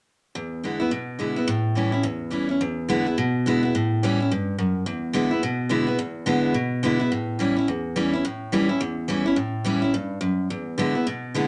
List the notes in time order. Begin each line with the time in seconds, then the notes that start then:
0.35 E2
0.64 D3 G#3 B3 E4
0.80 B3 E4
0.91 B2
1.19 D3 G#3 B3 E4
1.36 B3 E4
1.47 A2
1.75 E3 G3 C#4 E4
1.92 C#4 E4
2.03 E2
2.30 E3 G3 C#4 E4
2.49 C#4 E4
2.61 E2
2.88 D3 G#3 B3 E4
3.06 B3 E4
3.18 B2
3.46 D3 G#3 B3 E4
3.63 B3 E4
3.75 A2
4.03 E3 G3 C#4 E4
4.20 C#4 E4
4.31 G2
4.58 F#2
4.86 E2
5.13 D3 G#3 B3 E4
5.31 B3 E4
5.43 B2
5.69 D3 G#3 B3 E4
5.87 B3 E4
5.99 E2
6.26 D3 G#3 B3 E4
6.54 B2
6.83 D3 G#3 B3 E4
6.99 B3 E4
7.12 A2
7.39 E3 G3 C#4 E4
7.56 C#4 E4
7.68 E2
7.96 E3 G3 C#4 E4
8.13 C#4 E4
8.25 A2
8.52 E3 G3 C#4 E4
8.69 C#4 E4
8.81 E2
9.08 E3 G3 C#4 E4
9.26 C#4 E4
9.36 A2
9.65 E3 G3 C#4 E4
9.82 C#4 E4
9.94 G2
10.21 F#2
10.50 E2
10.78 D3 G#3 B3 E4
10.95 B3 E4
11.07 B2
11.34 D3 G#3 B3 E4